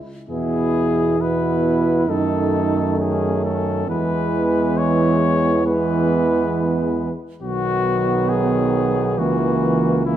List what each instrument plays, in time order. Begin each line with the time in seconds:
0.29 tuba E2, trombone B2, french horn B3, flugelhorn E4, trumpet G#4
1.19 trombone B2, french horn B3, flugelhorn E4, trumpet B4
2.08 tuba F#2, trombone D#3, french horn A3, flugelhorn D#4, trumpet A4
2.98 flugelhorn C#4, trumpet G#4
3.45 trumpet A4
3.87 tuba E2, trombone E3, french horn G#3, flugelhorn B3, trumpet B4
4.78 trumpet C#5
5.65 trombone E3, french horn G#3, flugelhorn B3, trumpet B4
7.41 tuba B1, trombone D#3, french horn F#3, flugelhorn B3, trumpet F#4
8.29 trumpet G#4
9.17 tuba C#2, trombone E3, french horn E3, flugelhorn A#3, trumpet F#4
10.05 french horn E3, trombone E3, flugelhorn A#3, trumpet E4